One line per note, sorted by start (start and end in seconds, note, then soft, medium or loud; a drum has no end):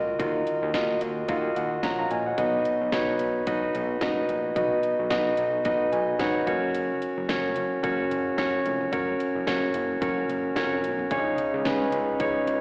0.00 0.15 C#2 medium
0.00 0.19 D#3 medium
0.00 0.19 F4 medium
0.00 0.19 F#4 medium
0.00 0.20 A#4 medium
0.00 0.20 D#5 medium
0.19 0.42 D#2 loud
0.19 0.97 D#3 medium
0.19 0.68 F4 medium
0.19 0.68 F#4 medium
0.19 0.69 A#4 medium
0.19 0.69 D#5 medium
0.19 kick medium
0.19 closed hi-hat medium
0.47 closed hi-hat medium
0.62 0.72 D#2 medium
0.74 0.96 D#2 medium
0.74 1.23 F4 medium
0.74 1.23 F#4 medium
0.74 1.23 A#4 medium
0.74 1.00 D#5 medium
0.74 kick medium
0.74 snare loud
0.74 closed hi-hat medium
1.01 1.24 D#2 medium
1.01 1.27 D#5 medium
1.01 closed hi-hat medium
1.28 1.51 D#2 loud
1.28 1.77 F4 medium
1.28 1.78 F#4 medium
1.28 1.78 A#4 medium
1.28 1.78 D#5 medium
1.28 1.54 F5 medium
1.28 kick medium
1.28 closed hi-hat medium
1.56 1.79 D#2 medium
1.56 1.81 F#5 medium
1.56 closed hi-hat medium
1.83 2.06 A#1 medium
1.83 1.98 C#5 soft
1.83 1.98 F#5 medium
1.83 1.97 A#5 medium
1.83 kick medium
1.83 snare medium
1.83 closed hi-hat medium
1.99 2.10 F5 soft
1.99 2.10 A#5 medium
2.11 2.33 A#1 medium
2.11 2.25 D#5 medium
2.11 2.25 G#5 medium
2.11 closed hi-hat medium
2.26 2.52 C#5 soft
2.26 2.52 F#5 medium
2.38 2.60 B1 medium
2.38 3.16 B2 medium
2.38 2.87 D#4 medium
2.38 2.87 F#4 medium
2.38 2.87 B4 medium
2.38 2.87 D#5 medium
2.38 kick medium
2.38 closed hi-hat medium
2.65 closed hi-hat medium
2.81 2.91 B1 medium
2.92 3.15 B1 loud
2.92 3.41 D#4 medium
2.92 3.42 F#4 medium
2.92 3.42 B4 medium
2.92 3.42 C#5 medium
2.92 kick medium
2.92 snare loud
2.92 closed hi-hat medium
3.19 3.42 B1 medium
3.19 closed hi-hat medium
3.46 3.69 B1 medium
3.46 3.96 D#4 medium
3.46 3.96 F#4 medium
3.46 3.96 B4 medium
3.46 3.96 D#5 medium
3.46 kick loud
3.46 closed hi-hat medium
3.75 3.97 B1 loud
3.75 closed hi-hat medium
4.01 4.24 F#1 medium
4.01 4.51 D#4 medium
4.01 4.51 F#4 medium
4.01 4.51 B4 medium
4.01 4.51 D#5 medium
4.01 kick medium
4.01 snare medium
4.01 closed hi-hat medium
4.29 4.52 A#1 medium
4.29 closed hi-hat medium
4.56 4.79 B1 medium
4.56 5.34 B2 medium
4.56 5.05 D#4 medium
4.56 5.05 F#4 medium
4.56 5.05 B4 medium
4.56 5.05 D#5 medium
4.56 kick medium
4.56 closed hi-hat medium
4.83 closed hi-hat medium
4.99 5.09 B1 medium
5.10 5.33 B1 loud
5.10 5.59 D#4 medium
5.10 5.59 F#4 medium
5.10 5.60 B4 medium
5.10 5.60 D#5 medium
5.10 kick medium
5.10 snare loud
5.10 closed hi-hat medium
5.37 5.60 B1 medium
5.37 closed hi-hat medium
5.64 5.88 B1 medium
5.64 6.14 D#4 medium
5.64 6.14 F#4 medium
5.64 6.14 B4 medium
5.64 6.14 D#5 medium
5.64 kick medium
5.64 closed hi-hat medium
5.92 6.15 B1 medium
5.92 6.18 G#5 medium
5.92 closed hi-hat medium
6.19 6.42 G#1 medium
6.19 6.47 D#4 medium
6.19 6.45 F#4 medium
6.19 6.47 B4 medium
6.19 6.46 C#5 medium
6.19 6.70 F#5 medium
6.19 kick medium
6.19 snare medium
6.19 closed hi-hat medium
6.46 6.92 F#1 medium
6.46 7.20 C#4 medium
6.46 7.20 F#4 medium
6.46 7.21 A#4 medium
6.46 7.21 C#5 medium
6.46 kick medium
6.46 closed hi-hat medium
6.74 closed hi-hat medium
7.02 closed hi-hat medium
7.17 7.27 F#1 medium
7.28 7.51 F#1 medium
7.28 7.78 C#4 medium
7.28 7.78 F#4 medium
7.28 7.78 A#4 medium
7.28 7.78 C#5 medium
7.28 kick medium
7.28 snare loud
7.28 closed hi-hat medium
7.56 7.79 F#1 medium
7.56 closed hi-hat medium
7.83 8.06 F#1 medium
7.83 8.32 C#4 medium
7.83 8.32 F#4 medium
7.83 8.33 A#4 medium
7.83 8.33 C#5 medium
7.83 kick medium
7.83 closed hi-hat medium
8.11 8.33 F#1 medium
8.11 closed hi-hat medium
8.37 8.60 F#1 medium
8.37 8.87 C#4 medium
8.37 8.87 F#4 medium
8.37 8.87 A#4 medium
8.37 8.87 C#5 medium
8.37 kick medium
8.37 snare medium
8.37 closed hi-hat medium
8.66 8.88 F1 medium
8.66 closed hi-hat medium
8.81 floor tom medium
8.92 9.15 F#1 loud
8.92 9.41 C#4 medium
8.92 9.41 F#4 medium
8.92 9.42 A#4 medium
8.92 9.42 C#5 medium
8.92 kick medium
8.92 closed hi-hat medium
9.20 closed hi-hat medium
9.35 9.45 F#1 medium
9.47 9.70 F#1 loud
9.47 9.96 C#4 medium
9.47 9.96 F#4 medium
9.47 9.96 A#4 medium
9.47 9.96 C#5 medium
9.47 kick medium
9.47 snare loud
9.47 closed hi-hat medium
9.74 9.97 F#1 medium
9.74 closed hi-hat medium
10.01 10.24 F#1 loud
10.01 10.50 C#4 medium
10.01 10.51 F#4 medium
10.01 10.51 A#4 medium
10.01 10.51 C#5 medium
10.01 kick loud
10.01 closed hi-hat medium
10.29 10.52 F#1 medium
10.29 closed hi-hat medium
10.55 10.85 F1 medium
10.55 11.05 C#4 medium
10.55 11.05 F#4 medium
10.55 11.05 A#4 medium
10.55 11.05 C#5 medium
10.55 kick medium
10.55 snare loud
10.55 closed hi-hat medium
10.84 11.06 B1 medium
10.84 closed hi-hat medium
10.99 floor tom medium
11.11 11.33 C#2 medium
11.11 11.89 C#3 medium
11.11 11.60 C#4 medium
11.11 11.18 D4 soft
11.11 11.60 G#4 medium
11.11 11.60 C#5 medium
11.11 kick medium
11.11 closed hi-hat medium
11.18 11.63 D#4 medium
11.38 closed hi-hat medium
11.54 11.63 C#2 medium
11.65 11.88 C#2 loud
11.65 12.14 C#4 medium
11.65 12.15 D#4 medium
11.65 12.15 G#4 medium
11.65 12.15 B4 medium
11.65 kick medium
11.65 snare medium
11.65 closed hi-hat medium
11.92 12.15 C#2 loud
11.92 closed hi-hat medium
12.20 12.42 C#2 loud
12.20 12.61 C#4 medium
12.20 12.61 D#4 medium
12.20 12.61 G#4 medium
12.20 12.61 C#5 medium
12.20 kick loud
12.20 closed hi-hat medium
12.47 12.61 C#2 medium
12.47 closed hi-hat medium